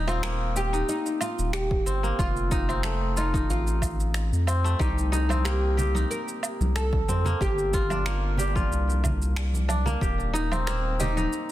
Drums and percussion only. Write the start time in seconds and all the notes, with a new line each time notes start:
0.08 low woodblock, shaker
0.23 finger snap, shaker
0.56 shaker
0.74 shaker
0.89 shaker
1.06 shaker
1.21 low woodblock, shaker
1.39 shaker
1.53 finger snap, shaker
1.71 kick
1.87 shaker
2.04 shaker
2.19 kick, shaker
2.36 shaker
2.51 kick, shaker
2.69 low woodblock, shaker
2.83 finger snap, shaker
3.17 shaker
3.34 kick, shaker
3.50 shaker
3.67 shaker
3.82 kick, low woodblock, shaker
4.00 shaker
4.14 finger snap, shaker
4.33 shaker
4.47 low woodblock, shaker
4.66 shaker
4.80 kick, shaker
4.98 shaker
5.12 high bongo, shaker
5.30 high conga, low woodblock, shaker
5.45 finger snap, shaker
5.78 low conga, shaker
5.95 high conga, shaker
6.11 shaker
6.28 shaker
6.43 low woodblock, shaker
6.61 high conga, shaker
6.76 finger snap, shaker
6.93 kick, high conga
7.08 high bongo, high conga, shaker
7.25 high bongo, low conga, shaker
7.41 kick, shaker
7.58 shaker
7.73 kick, high bongo, shaker
7.90 high conga, low woodblock, shaker
8.06 finger snap, shaker
8.37 low conga, shaker
8.56 kick, high conga, shaker
8.72 shaker
8.89 high conga, shaker
9.04 kick, low conga, low woodblock, shaker
9.22 shaker
9.36 finger snap, shaker
9.54 high conga, shaker
9.69 high conga, low woodblock, shaker
9.86 high bongo, low conga, shaker
10.01 kick, shaker
10.20 shaker
10.34 high bongo, shaker
10.52 high conga, low woodblock, shaker
10.67 finger snap, shaker
11.00 low conga, shaker
11.17 high conga, shaker
11.33 shaker